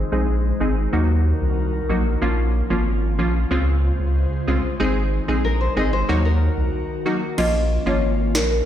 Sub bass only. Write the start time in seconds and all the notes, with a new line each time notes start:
0.12 A#1
0.61 G#1
0.93 D#2
1.41 C2
1.90 A#1
2.22 A#1
2.70 G#1
3.19 A#1
3.51 C#2
3.99 C#2
4.48 C2
4.80 G#1
5.28 A#1
5.77 G#1
6.09 D#2
6.57 C2
7.38 A#1
7.86 G#1
8.35 A#1